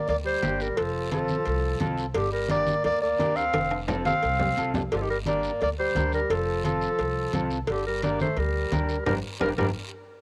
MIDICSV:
0, 0, Header, 1, 6, 480
1, 0, Start_track
1, 0, Key_signature, -2, "minor"
1, 0, Tempo, 345423
1, 1074, Time_signature, 4, 2, 24, 8
1, 14189, End_track
2, 0, Start_track
2, 0, Title_t, "Clarinet"
2, 0, Program_c, 0, 71
2, 131, Note_on_c, 0, 74, 96
2, 236, Note_off_c, 0, 74, 0
2, 368, Note_on_c, 0, 72, 100
2, 857, Note_on_c, 0, 70, 89
2, 877, Note_off_c, 0, 72, 0
2, 1100, Note_on_c, 0, 69, 92
2, 1121, Note_off_c, 0, 70, 0
2, 1564, Note_off_c, 0, 69, 0
2, 1572, Note_on_c, 0, 69, 97
2, 2707, Note_off_c, 0, 69, 0
2, 2996, Note_on_c, 0, 67, 101
2, 3218, Note_off_c, 0, 67, 0
2, 3234, Note_on_c, 0, 70, 91
2, 3457, Note_off_c, 0, 70, 0
2, 3485, Note_on_c, 0, 74, 105
2, 3926, Note_off_c, 0, 74, 0
2, 3964, Note_on_c, 0, 74, 111
2, 4180, Note_off_c, 0, 74, 0
2, 4188, Note_on_c, 0, 74, 105
2, 4674, Note_on_c, 0, 77, 113
2, 4694, Note_off_c, 0, 74, 0
2, 5258, Note_off_c, 0, 77, 0
2, 5641, Note_on_c, 0, 77, 108
2, 6541, Note_off_c, 0, 77, 0
2, 6851, Note_on_c, 0, 67, 82
2, 6901, Note_on_c, 0, 69, 71
2, 6922, Note_off_c, 0, 67, 0
2, 6971, Note_on_c, 0, 67, 88
2, 6991, Note_off_c, 0, 69, 0
2, 7082, Note_off_c, 0, 67, 0
2, 7089, Note_on_c, 0, 70, 89
2, 7194, Note_off_c, 0, 70, 0
2, 7329, Note_on_c, 0, 74, 94
2, 7768, Note_off_c, 0, 74, 0
2, 7822, Note_on_c, 0, 74, 101
2, 7924, Note_off_c, 0, 74, 0
2, 8053, Note_on_c, 0, 72, 94
2, 8490, Note_off_c, 0, 72, 0
2, 8533, Note_on_c, 0, 70, 96
2, 8765, Note_on_c, 0, 69, 98
2, 8786, Note_off_c, 0, 70, 0
2, 9234, Note_off_c, 0, 69, 0
2, 9242, Note_on_c, 0, 69, 95
2, 10382, Note_off_c, 0, 69, 0
2, 10691, Note_on_c, 0, 67, 95
2, 10906, Note_off_c, 0, 67, 0
2, 10928, Note_on_c, 0, 70, 85
2, 11144, Note_off_c, 0, 70, 0
2, 11164, Note_on_c, 0, 74, 91
2, 11382, Note_off_c, 0, 74, 0
2, 11409, Note_on_c, 0, 72, 86
2, 11640, Note_on_c, 0, 70, 93
2, 11661, Note_off_c, 0, 72, 0
2, 12578, Note_off_c, 0, 70, 0
2, 12586, Note_on_c, 0, 70, 95
2, 12704, Note_off_c, 0, 70, 0
2, 13074, Note_on_c, 0, 70, 98
2, 13190, Note_off_c, 0, 70, 0
2, 13305, Note_on_c, 0, 70, 87
2, 13423, Note_off_c, 0, 70, 0
2, 14189, End_track
3, 0, Start_track
3, 0, Title_t, "Clean electric guitar"
3, 0, Program_c, 1, 27
3, 594, Note_on_c, 1, 58, 71
3, 602, Note_on_c, 1, 67, 78
3, 607, Note_on_c, 1, 62, 64
3, 931, Note_off_c, 1, 58, 0
3, 933, Note_off_c, 1, 67, 0
3, 937, Note_off_c, 1, 62, 0
3, 1549, Note_on_c, 1, 60, 72
3, 1552, Note_on_c, 1, 65, 72
3, 1558, Note_on_c, 1, 69, 79
3, 1888, Note_off_c, 1, 60, 0
3, 1888, Note_off_c, 1, 65, 0
3, 1892, Note_off_c, 1, 69, 0
3, 2505, Note_on_c, 1, 60, 79
3, 2512, Note_on_c, 1, 65, 85
3, 2517, Note_on_c, 1, 69, 97
3, 2845, Note_off_c, 1, 60, 0
3, 2850, Note_off_c, 1, 65, 0
3, 2851, Note_off_c, 1, 69, 0
3, 3470, Note_on_c, 1, 62, 75
3, 3483, Note_on_c, 1, 67, 68
3, 3488, Note_on_c, 1, 70, 87
3, 3808, Note_off_c, 1, 62, 0
3, 3815, Note_off_c, 1, 67, 0
3, 3815, Note_off_c, 1, 70, 0
3, 4433, Note_on_c, 1, 62, 71
3, 4438, Note_on_c, 1, 67, 64
3, 4443, Note_on_c, 1, 70, 86
3, 4770, Note_off_c, 1, 62, 0
3, 4772, Note_off_c, 1, 67, 0
3, 4774, Note_off_c, 1, 70, 0
3, 5387, Note_on_c, 1, 60, 92
3, 5393, Note_on_c, 1, 65, 77
3, 5401, Note_on_c, 1, 69, 95
3, 5726, Note_off_c, 1, 60, 0
3, 5730, Note_off_c, 1, 65, 0
3, 5730, Note_off_c, 1, 69, 0
3, 6349, Note_on_c, 1, 60, 78
3, 6361, Note_on_c, 1, 65, 80
3, 6373, Note_on_c, 1, 69, 94
3, 6687, Note_off_c, 1, 60, 0
3, 6694, Note_off_c, 1, 65, 0
3, 6696, Note_off_c, 1, 69, 0
3, 7319, Note_on_c, 1, 62, 74
3, 7325, Note_on_c, 1, 67, 68
3, 7334, Note_on_c, 1, 70, 81
3, 7652, Note_off_c, 1, 62, 0
3, 7656, Note_off_c, 1, 67, 0
3, 7658, Note_off_c, 1, 70, 0
3, 8278, Note_on_c, 1, 62, 66
3, 8285, Note_on_c, 1, 67, 65
3, 8287, Note_on_c, 1, 70, 72
3, 8613, Note_off_c, 1, 62, 0
3, 8613, Note_off_c, 1, 67, 0
3, 8616, Note_off_c, 1, 70, 0
3, 9229, Note_on_c, 1, 60, 74
3, 9236, Note_on_c, 1, 65, 64
3, 9246, Note_on_c, 1, 69, 81
3, 9567, Note_off_c, 1, 60, 0
3, 9571, Note_off_c, 1, 65, 0
3, 9576, Note_off_c, 1, 69, 0
3, 10201, Note_on_c, 1, 60, 90
3, 10207, Note_on_c, 1, 65, 78
3, 10218, Note_on_c, 1, 69, 88
3, 10533, Note_off_c, 1, 60, 0
3, 10536, Note_off_c, 1, 65, 0
3, 10542, Note_off_c, 1, 69, 0
3, 11162, Note_on_c, 1, 62, 77
3, 11169, Note_on_c, 1, 67, 67
3, 11172, Note_on_c, 1, 70, 80
3, 11494, Note_off_c, 1, 62, 0
3, 11497, Note_off_c, 1, 70, 0
3, 11498, Note_off_c, 1, 67, 0
3, 12118, Note_on_c, 1, 62, 67
3, 12127, Note_on_c, 1, 67, 70
3, 12129, Note_on_c, 1, 70, 76
3, 12452, Note_off_c, 1, 62, 0
3, 12456, Note_off_c, 1, 70, 0
3, 12457, Note_off_c, 1, 67, 0
3, 12601, Note_on_c, 1, 62, 94
3, 12601, Note_on_c, 1, 67, 90
3, 12602, Note_on_c, 1, 70, 99
3, 12751, Note_off_c, 1, 67, 0
3, 12751, Note_off_c, 1, 70, 0
3, 12753, Note_off_c, 1, 62, 0
3, 13076, Note_on_c, 1, 62, 101
3, 13079, Note_on_c, 1, 67, 101
3, 13079, Note_on_c, 1, 70, 93
3, 13229, Note_off_c, 1, 70, 0
3, 13230, Note_off_c, 1, 62, 0
3, 13231, Note_off_c, 1, 67, 0
3, 13317, Note_on_c, 1, 62, 102
3, 13320, Note_on_c, 1, 67, 104
3, 13322, Note_on_c, 1, 70, 102
3, 13470, Note_off_c, 1, 70, 0
3, 13471, Note_off_c, 1, 62, 0
3, 13471, Note_off_c, 1, 67, 0
3, 14189, End_track
4, 0, Start_track
4, 0, Title_t, "Tenor saxophone"
4, 0, Program_c, 2, 66
4, 121, Note_on_c, 2, 58, 74
4, 227, Note_off_c, 2, 58, 0
4, 347, Note_on_c, 2, 55, 83
4, 836, Note_off_c, 2, 55, 0
4, 836, Note_on_c, 2, 55, 72
4, 1068, Note_on_c, 2, 53, 79
4, 1089, Note_off_c, 2, 55, 0
4, 1535, Note_off_c, 2, 53, 0
4, 1543, Note_on_c, 2, 53, 83
4, 2693, Note_off_c, 2, 53, 0
4, 2979, Note_on_c, 2, 50, 84
4, 3209, Note_off_c, 2, 50, 0
4, 3221, Note_on_c, 2, 55, 76
4, 3450, Note_off_c, 2, 55, 0
4, 3489, Note_on_c, 2, 58, 81
4, 3928, Note_off_c, 2, 58, 0
4, 3965, Note_on_c, 2, 58, 87
4, 4183, Note_off_c, 2, 58, 0
4, 4206, Note_on_c, 2, 58, 89
4, 4669, Note_on_c, 2, 60, 87
4, 4690, Note_off_c, 2, 58, 0
4, 5256, Note_off_c, 2, 60, 0
4, 5644, Note_on_c, 2, 60, 88
4, 6543, Note_off_c, 2, 60, 0
4, 6843, Note_on_c, 2, 50, 72
4, 6880, Note_on_c, 2, 53, 63
4, 6901, Note_off_c, 2, 50, 0
4, 6964, Note_on_c, 2, 51, 72
4, 6985, Note_off_c, 2, 53, 0
4, 7079, Note_off_c, 2, 51, 0
4, 7085, Note_on_c, 2, 55, 72
4, 7191, Note_off_c, 2, 55, 0
4, 7349, Note_on_c, 2, 58, 77
4, 7779, Note_off_c, 2, 58, 0
4, 7812, Note_on_c, 2, 58, 76
4, 7916, Note_off_c, 2, 58, 0
4, 8053, Note_on_c, 2, 55, 82
4, 8490, Note_off_c, 2, 55, 0
4, 8539, Note_on_c, 2, 55, 76
4, 8783, Note_on_c, 2, 53, 82
4, 8804, Note_off_c, 2, 55, 0
4, 9244, Note_off_c, 2, 53, 0
4, 9252, Note_on_c, 2, 53, 73
4, 10387, Note_off_c, 2, 53, 0
4, 10697, Note_on_c, 2, 50, 81
4, 10909, Note_off_c, 2, 50, 0
4, 10939, Note_on_c, 2, 55, 67
4, 11150, Note_off_c, 2, 55, 0
4, 11168, Note_on_c, 2, 58, 74
4, 11384, Note_off_c, 2, 58, 0
4, 11420, Note_on_c, 2, 57, 71
4, 11660, Note_on_c, 2, 55, 72
4, 11681, Note_off_c, 2, 57, 0
4, 12581, Note_off_c, 2, 55, 0
4, 12589, Note_on_c, 2, 55, 92
4, 12706, Note_off_c, 2, 55, 0
4, 13066, Note_on_c, 2, 55, 89
4, 13184, Note_off_c, 2, 55, 0
4, 13317, Note_on_c, 2, 55, 89
4, 13431, Note_off_c, 2, 55, 0
4, 14189, End_track
5, 0, Start_track
5, 0, Title_t, "Upright bass"
5, 0, Program_c, 3, 32
5, 118, Note_on_c, 3, 38, 97
5, 501, Note_off_c, 3, 38, 0
5, 597, Note_on_c, 3, 31, 89
5, 980, Note_off_c, 3, 31, 0
5, 1084, Note_on_c, 3, 29, 88
5, 1848, Note_off_c, 3, 29, 0
5, 2039, Note_on_c, 3, 36, 99
5, 2421, Note_off_c, 3, 36, 0
5, 2519, Note_on_c, 3, 36, 97
5, 2901, Note_off_c, 3, 36, 0
5, 2992, Note_on_c, 3, 31, 102
5, 3761, Note_off_c, 3, 31, 0
5, 3956, Note_on_c, 3, 38, 94
5, 4339, Note_off_c, 3, 38, 0
5, 4444, Note_on_c, 3, 38, 88
5, 4824, Note_off_c, 3, 38, 0
5, 4919, Note_on_c, 3, 29, 92
5, 5685, Note_off_c, 3, 29, 0
5, 5890, Note_on_c, 3, 36, 94
5, 6268, Note_off_c, 3, 36, 0
5, 6368, Note_on_c, 3, 36, 79
5, 6746, Note_off_c, 3, 36, 0
5, 6852, Note_on_c, 3, 31, 95
5, 7613, Note_off_c, 3, 31, 0
5, 7812, Note_on_c, 3, 38, 100
5, 8188, Note_off_c, 3, 38, 0
5, 8280, Note_on_c, 3, 38, 89
5, 8662, Note_off_c, 3, 38, 0
5, 8752, Note_on_c, 3, 29, 94
5, 9521, Note_off_c, 3, 29, 0
5, 9716, Note_on_c, 3, 36, 97
5, 10099, Note_off_c, 3, 36, 0
5, 10189, Note_on_c, 3, 36, 84
5, 10575, Note_off_c, 3, 36, 0
5, 10665, Note_on_c, 3, 31, 96
5, 11437, Note_off_c, 3, 31, 0
5, 11632, Note_on_c, 3, 38, 95
5, 12017, Note_off_c, 3, 38, 0
5, 12112, Note_on_c, 3, 38, 91
5, 12497, Note_off_c, 3, 38, 0
5, 12602, Note_on_c, 3, 31, 103
5, 12777, Note_off_c, 3, 31, 0
5, 13080, Note_on_c, 3, 31, 85
5, 13256, Note_off_c, 3, 31, 0
5, 13311, Note_on_c, 3, 31, 100
5, 13491, Note_off_c, 3, 31, 0
5, 14189, End_track
6, 0, Start_track
6, 0, Title_t, "Drums"
6, 109, Note_on_c, 9, 74, 68
6, 120, Note_on_c, 9, 56, 76
6, 247, Note_off_c, 9, 74, 0
6, 259, Note_off_c, 9, 56, 0
6, 592, Note_on_c, 9, 56, 60
6, 592, Note_on_c, 9, 66, 67
6, 593, Note_on_c, 9, 63, 72
6, 593, Note_on_c, 9, 73, 71
6, 731, Note_off_c, 9, 56, 0
6, 731, Note_off_c, 9, 66, 0
6, 732, Note_off_c, 9, 63, 0
6, 732, Note_off_c, 9, 73, 0
6, 836, Note_on_c, 9, 73, 74
6, 975, Note_off_c, 9, 73, 0
6, 1074, Note_on_c, 9, 56, 104
6, 1074, Note_on_c, 9, 74, 70
6, 1213, Note_off_c, 9, 56, 0
6, 1213, Note_off_c, 9, 74, 0
6, 1548, Note_on_c, 9, 73, 68
6, 1549, Note_on_c, 9, 56, 65
6, 1553, Note_on_c, 9, 63, 75
6, 1687, Note_off_c, 9, 73, 0
6, 1688, Note_off_c, 9, 56, 0
6, 1692, Note_off_c, 9, 63, 0
6, 1781, Note_on_c, 9, 73, 69
6, 1795, Note_on_c, 9, 63, 69
6, 1920, Note_off_c, 9, 73, 0
6, 1934, Note_off_c, 9, 63, 0
6, 2021, Note_on_c, 9, 74, 68
6, 2023, Note_on_c, 9, 56, 78
6, 2160, Note_off_c, 9, 74, 0
6, 2162, Note_off_c, 9, 56, 0
6, 2496, Note_on_c, 9, 73, 65
6, 2502, Note_on_c, 9, 56, 57
6, 2510, Note_on_c, 9, 63, 78
6, 2510, Note_on_c, 9, 64, 70
6, 2635, Note_off_c, 9, 73, 0
6, 2641, Note_off_c, 9, 56, 0
6, 2649, Note_off_c, 9, 63, 0
6, 2649, Note_off_c, 9, 64, 0
6, 2744, Note_on_c, 9, 73, 65
6, 2883, Note_off_c, 9, 73, 0
6, 2979, Note_on_c, 9, 56, 105
6, 2991, Note_on_c, 9, 74, 70
6, 3118, Note_off_c, 9, 56, 0
6, 3130, Note_off_c, 9, 74, 0
6, 3455, Note_on_c, 9, 63, 77
6, 3467, Note_on_c, 9, 56, 72
6, 3468, Note_on_c, 9, 73, 69
6, 3594, Note_off_c, 9, 63, 0
6, 3606, Note_off_c, 9, 56, 0
6, 3607, Note_off_c, 9, 73, 0
6, 3706, Note_on_c, 9, 63, 69
6, 3706, Note_on_c, 9, 73, 74
6, 3845, Note_off_c, 9, 63, 0
6, 3845, Note_off_c, 9, 73, 0
6, 3949, Note_on_c, 9, 56, 80
6, 3959, Note_on_c, 9, 74, 67
6, 4088, Note_off_c, 9, 56, 0
6, 4098, Note_off_c, 9, 74, 0
6, 4432, Note_on_c, 9, 73, 68
6, 4439, Note_on_c, 9, 63, 78
6, 4445, Note_on_c, 9, 56, 60
6, 4445, Note_on_c, 9, 66, 64
6, 4571, Note_off_c, 9, 73, 0
6, 4578, Note_off_c, 9, 63, 0
6, 4584, Note_off_c, 9, 56, 0
6, 4584, Note_off_c, 9, 66, 0
6, 4670, Note_on_c, 9, 73, 68
6, 4809, Note_off_c, 9, 73, 0
6, 4908, Note_on_c, 9, 74, 74
6, 4915, Note_on_c, 9, 56, 105
6, 4915, Note_on_c, 9, 65, 85
6, 4916, Note_on_c, 9, 63, 76
6, 5046, Note_off_c, 9, 74, 0
6, 5054, Note_off_c, 9, 56, 0
6, 5054, Note_off_c, 9, 65, 0
6, 5055, Note_off_c, 9, 63, 0
6, 5157, Note_on_c, 9, 65, 86
6, 5296, Note_off_c, 9, 65, 0
6, 5393, Note_on_c, 9, 73, 68
6, 5395, Note_on_c, 9, 56, 67
6, 5395, Note_on_c, 9, 65, 86
6, 5404, Note_on_c, 9, 64, 97
6, 5532, Note_off_c, 9, 73, 0
6, 5534, Note_off_c, 9, 56, 0
6, 5534, Note_off_c, 9, 65, 0
6, 5543, Note_off_c, 9, 64, 0
6, 5632, Note_on_c, 9, 66, 71
6, 5639, Note_on_c, 9, 73, 69
6, 5647, Note_on_c, 9, 63, 78
6, 5771, Note_off_c, 9, 66, 0
6, 5778, Note_off_c, 9, 73, 0
6, 5786, Note_off_c, 9, 63, 0
6, 5874, Note_on_c, 9, 56, 80
6, 5876, Note_on_c, 9, 74, 71
6, 6013, Note_off_c, 9, 56, 0
6, 6015, Note_off_c, 9, 74, 0
6, 6109, Note_on_c, 9, 66, 85
6, 6115, Note_on_c, 9, 64, 84
6, 6248, Note_off_c, 9, 66, 0
6, 6254, Note_off_c, 9, 64, 0
6, 6362, Note_on_c, 9, 56, 63
6, 6362, Note_on_c, 9, 73, 67
6, 6501, Note_off_c, 9, 56, 0
6, 6501, Note_off_c, 9, 73, 0
6, 6590, Note_on_c, 9, 64, 96
6, 6601, Note_on_c, 9, 73, 74
6, 6602, Note_on_c, 9, 66, 89
6, 6729, Note_off_c, 9, 64, 0
6, 6740, Note_off_c, 9, 73, 0
6, 6741, Note_off_c, 9, 66, 0
6, 6835, Note_on_c, 9, 74, 66
6, 6838, Note_on_c, 9, 56, 104
6, 6974, Note_off_c, 9, 74, 0
6, 6977, Note_off_c, 9, 56, 0
6, 7307, Note_on_c, 9, 63, 76
6, 7312, Note_on_c, 9, 73, 67
6, 7317, Note_on_c, 9, 56, 64
6, 7446, Note_off_c, 9, 63, 0
6, 7451, Note_off_c, 9, 73, 0
6, 7456, Note_off_c, 9, 56, 0
6, 7551, Note_on_c, 9, 73, 69
6, 7689, Note_off_c, 9, 73, 0
6, 7793, Note_on_c, 9, 74, 68
6, 7805, Note_on_c, 9, 56, 79
6, 7932, Note_off_c, 9, 74, 0
6, 7944, Note_off_c, 9, 56, 0
6, 8269, Note_on_c, 9, 63, 73
6, 8270, Note_on_c, 9, 73, 68
6, 8280, Note_on_c, 9, 56, 63
6, 8280, Note_on_c, 9, 66, 65
6, 8408, Note_off_c, 9, 63, 0
6, 8409, Note_off_c, 9, 73, 0
6, 8418, Note_off_c, 9, 56, 0
6, 8418, Note_off_c, 9, 66, 0
6, 8507, Note_on_c, 9, 73, 72
6, 8646, Note_off_c, 9, 73, 0
6, 8751, Note_on_c, 9, 74, 71
6, 8759, Note_on_c, 9, 56, 107
6, 8890, Note_off_c, 9, 74, 0
6, 8898, Note_off_c, 9, 56, 0
6, 9223, Note_on_c, 9, 73, 66
6, 9234, Note_on_c, 9, 63, 77
6, 9241, Note_on_c, 9, 56, 65
6, 9362, Note_off_c, 9, 73, 0
6, 9373, Note_off_c, 9, 63, 0
6, 9380, Note_off_c, 9, 56, 0
6, 9468, Note_on_c, 9, 73, 67
6, 9607, Note_off_c, 9, 73, 0
6, 9709, Note_on_c, 9, 56, 80
6, 9709, Note_on_c, 9, 74, 65
6, 9848, Note_off_c, 9, 56, 0
6, 9848, Note_off_c, 9, 74, 0
6, 10186, Note_on_c, 9, 56, 62
6, 10188, Note_on_c, 9, 73, 65
6, 10192, Note_on_c, 9, 63, 73
6, 10192, Note_on_c, 9, 64, 74
6, 10325, Note_off_c, 9, 56, 0
6, 10327, Note_off_c, 9, 73, 0
6, 10331, Note_off_c, 9, 63, 0
6, 10331, Note_off_c, 9, 64, 0
6, 10430, Note_on_c, 9, 73, 73
6, 10569, Note_off_c, 9, 73, 0
6, 10663, Note_on_c, 9, 74, 69
6, 10664, Note_on_c, 9, 56, 100
6, 10802, Note_off_c, 9, 74, 0
6, 10803, Note_off_c, 9, 56, 0
6, 11149, Note_on_c, 9, 56, 67
6, 11149, Note_on_c, 9, 73, 64
6, 11161, Note_on_c, 9, 63, 80
6, 11288, Note_off_c, 9, 56, 0
6, 11288, Note_off_c, 9, 73, 0
6, 11300, Note_off_c, 9, 63, 0
6, 11385, Note_on_c, 9, 73, 72
6, 11408, Note_on_c, 9, 63, 72
6, 11524, Note_off_c, 9, 73, 0
6, 11547, Note_off_c, 9, 63, 0
6, 11623, Note_on_c, 9, 56, 79
6, 11629, Note_on_c, 9, 74, 72
6, 11762, Note_off_c, 9, 56, 0
6, 11768, Note_off_c, 9, 74, 0
6, 12113, Note_on_c, 9, 56, 68
6, 12113, Note_on_c, 9, 66, 68
6, 12115, Note_on_c, 9, 73, 71
6, 12119, Note_on_c, 9, 63, 81
6, 12252, Note_off_c, 9, 56, 0
6, 12252, Note_off_c, 9, 66, 0
6, 12254, Note_off_c, 9, 73, 0
6, 12258, Note_off_c, 9, 63, 0
6, 12347, Note_on_c, 9, 73, 69
6, 12486, Note_off_c, 9, 73, 0
6, 12592, Note_on_c, 9, 74, 95
6, 12593, Note_on_c, 9, 65, 96
6, 12597, Note_on_c, 9, 64, 104
6, 12731, Note_off_c, 9, 74, 0
6, 12732, Note_off_c, 9, 65, 0
6, 12736, Note_off_c, 9, 64, 0
6, 13071, Note_on_c, 9, 64, 86
6, 13073, Note_on_c, 9, 65, 97
6, 13210, Note_off_c, 9, 64, 0
6, 13212, Note_off_c, 9, 65, 0
6, 13313, Note_on_c, 9, 74, 90
6, 13316, Note_on_c, 9, 65, 91
6, 13320, Note_on_c, 9, 64, 100
6, 13452, Note_off_c, 9, 74, 0
6, 13455, Note_off_c, 9, 65, 0
6, 13459, Note_off_c, 9, 64, 0
6, 14189, End_track
0, 0, End_of_file